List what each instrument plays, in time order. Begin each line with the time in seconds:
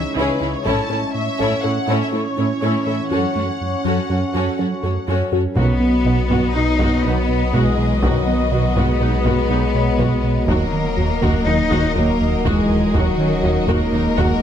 Already playing: synth drone G#3 C#4 C#5, grand piano D#4 E4 D#5 E5 F#5, violin section E5
0.15 analog synth bass C#2, synth arpeggio sound C#3, cello section C#3, viola section C#4 E4, violin section G#4 B4 C#5
0.40 analog synth bass C#2, cello section C#3, synth arpeggio sound C#4, viola section C#4 E4, violin section G#4 C#5
0.55 violin section C#5
0.65 analog synth bass A2, cello section A2, synth drone E3 C#4 C#5, synth arpeggio sound A3, viola section C#4 E4, violin section A4 C#5 A5, taiko
0.89 analog synth bass A2, cello section A2, synth arpeggio sound C#4, viola section C#4 E4, violin section A4 C#5
1.14 analog synth bass A2, violin section E5
1.39 analog synth bass A2, cello section A2, synth arpeggio sound A3, viola section C#4 E4, violin section A4 C#5, grand piano E5, taiko
1.63 cello section A2, analog synth bass A2, viola section C#4 E4, violin section A4 C#5 F#5, synth arpeggio sound A4
1.87 analog synth bass A2, cello section A2, synth arpeggio sound A3, viola section C#4 E4, violin section A4 C#5
2.01 violin section E5
2.12 cello section A2, analog synth bass A3, viola section C#4 E4, synth arpeggio sound E4, violin section A4 C#5
2.37 analog synth bass A2, cello section A2, synth arpeggio sound C#4, viola section C#4 E4, violin section A4 C#5
2.62 analog synth bass A2, cello section A2, synth arpeggio sound A3, viola section C#4 E4, violin section A4 C#5
2.86 analog synth bass A2, cello section A2, viola section C#4 E4, violin section A4 C#5 E5, synth arpeggio sound A4
3.11 analog synth bass F#2, cello section F#2, synth arpeggio sound F#3, synth drone F#3 A4, viola section C#4 F#4, violin section A4 C#5 F#5
3.35 analog synth bass F#2, cello section F#2, synth arpeggio sound A3, viola section C#4 F#4, violin section A4 C#5
3.61 analog synth bass F#2
3.85 analog synth bass F#2, cello section F#2, synth arpeggio sound F#3, viola section C#4 F#4, violin section A4 C#5
4.09 cello section F#2, analog synth bass F#2, viola section C#4 F#4, grand piano C#4 C#5, synth arpeggio sound F#4, violin section A4 C#5
4.34 cello section F#2, analog synth bass F#2, synth arpeggio sound F#3, viola section C#4 F#4, violin section A4 C#5
4.58 cello section F#2, analog synth bass F#3, viola section C#4 F#4, synth arpeggio sound C#4, violin section A4 C#5
4.83 analog synth bass F#2, cello section F#2, synth arpeggio sound A3, viola section C#4 F#4, violin section A4 C#5
5.08 analog synth bass F#2, cello section F#2, synth arpeggio sound F#3, viola section C#4 F#4, violin section A4 C#5
5.32 analog synth bass F#2, cello section F#2, viola section C#4 F#4, synth arpeggio sound F#4, violin section A4 C#5
5.56 double bass section B1, sub bass B1, analog synth bass B2, trombone section D#3 F#3, synth drone F#3 B3 F#4 D#5, french horn section F#3, synth arpeggio sound B3, cello section B3, viola section F#4, violin section B4 D#5, taiko
5.80 analog synth bass B3
6.05 double bass section B1, analog synth bass B2, viola section B3 F#4, synth arpeggio sound D#4, grand piano F#4 F#5
6.30 double bass section B1, analog synth bass B2, synth arpeggio sound B3, viola section F#4, taiko
6.54 double bass section B1, analog synth bass B2, french horn section B3, viola section D#4 F#4, cello section D#4, synth arpeggio sound D#4, violin section D#5
6.79 double bass section B1, analog synth bass B2, synth arpeggio sound B3, viola section F#4, taiko
7.03 double bass section B1, analog synth bass B2, trombone section D#3 F#3, french horn section F#3, cello section B3, synth arpeggio sound D#4, viola section D#4 F#4, violin section B4
7.28 analog synth bass B2
7.53 double bass section B1, analog synth bass B2, french horn section E3, cello section G#3, synth arpeggio sound B3, viola section F#4, violin section G#4, taiko
7.78 analog synth bass B2
8.02 double bass section B1, analog synth bass B2, french horn section D#3, trombone section D#3 F#3, cello section F#3, synth arpeggio sound B3, violin section F#4, viola section F#4, taiko
8.26 analog synth bass B3, grand piano F#5
8.52 double bass section B1, analog synth bass B2, viola section B3 F#4, synth arpeggio sound D#4
8.76 double bass section B1, analog synth bass B2, french horn section G#3, cello section B3, synth arpeggio sound B3, viola section F#4, violin section B4, taiko
9.00 double bass section B1, analog synth bass B2, synth arpeggio sound D#4, viola section D#4 F#4
9.24 double bass section B1, analog synth bass B2, synth arpeggio sound B3, viola section F#4, taiko
9.49 double bass section B1, analog synth bass B2, trombone section D#3 F#3, synth arpeggio sound D#4, viola section D#4 F#4
9.74 analog synth bass B2, grand piano C#5
9.99 double bass section B1, analog synth bass B2, synth arpeggio sound B3, viola section F#4, taiko
10.23 analog synth bass B2
10.48 sub bass D#1, analog synth bass D#2, double bass section D#2, synth arpeggio sound D#3, trombone section D#3 F#3, french horn section F#3, synth drone F#3 D#4 F#4 D#5, cello section A#3, viola section F#4, violin section A#4 D#5, taiko
10.72 analog synth bass D#3
10.97 analog synth bass D#2, double bass section D#2, synth arpeggio sound F#3, viola section A#3 F#4
11.22 analog synth bass D#2, double bass section D#2, synth arpeggio sound D#3, viola section F#4, taiko
11.46 analog synth bass D#2, double bass section D#2, synth arpeggio sound F#3, french horn section A#3, cello section D#4, viola section D#4 F#4, grand piano D#4 D#5, violin section D#5
11.71 analog synth bass D#2, double bass section D#2, synth arpeggio sound D#3, viola section F#4, taiko
11.95 analog synth bass D#2, double bass section D#2, trombone section D#3 F#3, synth arpeggio sound F#3, french horn section F#3, cello section A#3, viola section D#4 F#4, violin section A#4
12.20 analog synth bass D#2
12.45 analog synth bass D#2, double bass section D#2, synth arpeggio sound D#3, french horn section E3, cello section G#3, viola section F#4, violin section G#4, taiko
12.69 analog synth bass D#2
12.94 analog synth bass D#2, double bass section D#2, french horn section D#3, synth arpeggio sound D#3, trombone section D#3 F#3, cello section F#3, violin section F#4, viola section F#4, taiko
13.18 analog synth bass D#3, grand piano C#4 C#5
13.43 analog synth bass D#2, double bass section D#2, synth arpeggio sound F#3, viola section A#3 F#4, grand piano D#4 D#5
13.68 analog synth bass D#2, double bass section D#2, synth arpeggio sound D#3, french horn section G#3, cello section A#3, viola section F#4, violin section A#4, taiko
13.92 analog synth bass D#2, double bass section D#2, synth arpeggio sound F#3, viola section D#4 F#4
14.17 analog synth bass D#2, double bass section D#2, synth arpeggio sound D#3, viola section F#4, grand piano F#5, taiko